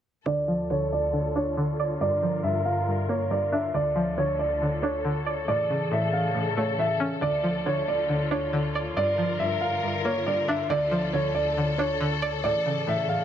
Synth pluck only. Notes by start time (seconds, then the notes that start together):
0.26 D3
0.48 F3
0.70 D3
1.13 D3
1.36 D4
1.57 D3
1.80 D5
2.01 G2
2.22 F3
2.44 G2
2.87 G2
3.09 A#3
3.31 G2
3.52 D4
3.74 D3
3.96 F3
4.18 D3
4.62 D3
4.83 D4
5.05 D3
5.26 D5
5.48 A2
5.70 C#3
5.92 A2
6.34 A2
6.57 A3
6.79 A2
7.00 C#4
7.21 D3
7.44 F3
7.66 D3
8.09 D3
8.31 D4
8.53 D3
8.75 D5
8.96 G2
9.18 F3
9.39 G2
9.83 G2
10.05 A#3
10.27 G2
10.48 D4
10.70 D3
10.91 F3
11.14 D3
11.58 D3
11.79 D4
12.01 D3
12.22 D5
12.44 A2
12.66 C#3
12.87 A2